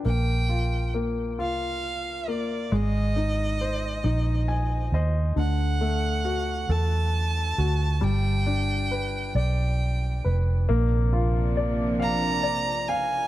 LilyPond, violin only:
\new Staff \with { instrumentName = "Violin" } { \time 6/8 \key bes \mixolydian \tempo 4. = 45 g''4 r8 f''4 d''8 | ees''2~ ees''8 r8 | fis''4. a''4. | g''4. g''4 r8 |
r4. bes''4 aes''8 | }